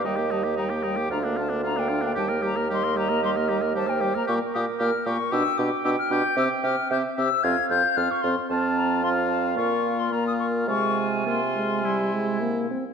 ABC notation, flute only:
X:1
M:4/4
L:1/16
Q:1/4=113
K:Eblyd
V:1 name="Flute"
g2 a2 b2 g2 b2 a2 b g2 g | a2 b2 c'2 b2 c'2 b2 a g2 b | [K:Fm] d'2 e'2 f'2 d'2 =e'2 =d'2 e' f' g'2 | =e'2 f'2 g'2 e'2 a'2 g'2 f' d' c'2 |
=a2 b2 c'2 a2 d'3 c' b e' d'2 | d'3 z c'8 z4 |]